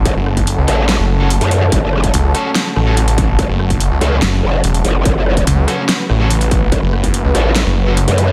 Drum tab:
HH |x--xx-x-x---xxx-|x--xx-x-x---xxx-|x--xx-x-x---xxx-|x--xx-x-x---xxx-|
SD |--r---r-o-------|--r---r-o-r-----|--r---r-o-------|--r---r-o-r-----|
BD |o--o------------|o--o----------o-|o--o------------|o--o----------o-|

HH |x--xx-x-x---xxx-|
SD |--r---r-o-------|
BD |o--o------------|